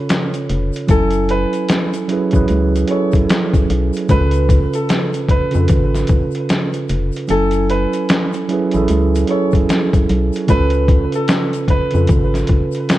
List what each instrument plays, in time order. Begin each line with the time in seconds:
Already playing: tine electric piano C#3 C#4 F4 A4 C#5
0.09 snare, closed hi-hat, shaker
0.34 closed hi-hat, shaker
0.50 fm bass F1, closed hi-hat
0.73 closed hi-hat, shaker
0.87 fm bass F#1, tine electric piano F#3 C#4 E4 G#5, upright piano A4, kick, closed hi-hat, shaker
0.92 tine electric piano A4
1.11 closed hi-hat, shaker
1.29 upright piano B4, closed hi-hat
1.53 closed hi-hat, shaker
1.69 snare, closed hi-hat, shaker
1.94 closed hi-hat, shaker
2.08 tine electric piano F#3 C#4 E4 G#4, closed hi-hat
2.13 tine electric piano B4
2.31 fm bass A1, tine electric piano F#3 C#4 E4, kick, closed hi-hat, shaker
2.35 tine electric piano G#4 B4
2.48 fm bass C#2, closed hi-hat, shaker
2.76 closed hi-hat, shaker
2.87 tine electric piano F#3 C#4 E4 G#4, upright piano C#5, closed hi-hat
2.92 tine electric piano A4
3.12 kick, closed hi-hat, shaker
3.29 snare, closed hi-hat, shaker
3.54 kick, closed hi-hat, shaker
3.70 fm bass B1, closed hi-hat
3.93 closed hi-hat, shaker
4.08 fm bass C#2, tine electric piano C#3 C#4 F4 A4, upright piano B4, kick, closed hi-hat, shaker
4.13 tine electric piano B4
4.31 closed hi-hat, shaker
4.49 kick, closed hi-hat, shaker
4.73 upright piano A4, closed hi-hat, shaker
4.89 snare, closed hi-hat, shaker
5.13 closed hi-hat, shaker
5.28 upright piano B4, kick, closed hi-hat
5.51 tine electric piano C#3 C#4 F4 A4, closed hi-hat, shaker
5.55 fm bass F2, tine electric piano B4
5.68 fm bass G#1, kick, closed hi-hat, shaker
5.94 snare, closed hi-hat, shaker
6.07 kick, closed hi-hat, shaker
6.31 closed hi-hat, shaker
6.49 snare, closed hi-hat, shaker
6.73 closed hi-hat, shaker
6.89 fm bass F1, closed hi-hat, shaker
7.12 shaker
7.17 closed hi-hat
7.27 fm bass F#1, tine electric piano F#3 C#4 E4 G#5, upright piano A4, closed hi-hat, shaker
7.32 tine electric piano A4
7.51 closed hi-hat, shaker
7.70 upright piano B4, closed hi-hat
7.93 closed hi-hat, shaker
8.09 snare, closed hi-hat, shaker
8.33 closed hi-hat, shaker
8.48 tine electric piano F#3 C#4 E4 G#4, closed hi-hat
8.53 tine electric piano B4
8.71 fm bass A1, tine electric piano F#3 C#4 E4, closed hi-hat, shaker
8.76 tine electric piano G#4 A4
8.88 fm bass C#2, closed hi-hat, shaker
9.15 closed hi-hat, shaker
9.27 tine electric piano F#3 C#4 E4 G#4, upright piano C#5, closed hi-hat
9.32 tine electric piano A4
9.51 kick, closed hi-hat, shaker
9.69 snare, closed hi-hat, shaker
9.93 kick, closed hi-hat, shaker
10.09 fm bass B1, closed hi-hat
10.33 closed hi-hat, shaker
10.48 fm bass C#2, tine electric piano C#3 C#4 F4 A4, upright piano B4, kick, closed hi-hat, shaker
10.52 tine electric piano B4
10.70 closed hi-hat, shaker
10.88 kick, closed hi-hat
11.12 upright piano A4, closed hi-hat, shaker
11.28 snare, closed hi-hat, shaker
11.53 closed hi-hat, shaker
11.68 upright piano B4, kick, closed hi-hat
11.91 fm bass F2, tine electric piano C#3 C#4 F4, closed hi-hat, shaker
11.95 tine electric piano A4 B4
12.07 fm bass G#1, kick, closed hi-hat, shaker
12.34 snare, closed hi-hat, shaker
12.47 kick, closed hi-hat
12.72 closed hi-hat, shaker
12.89 snare, closed hi-hat, shaker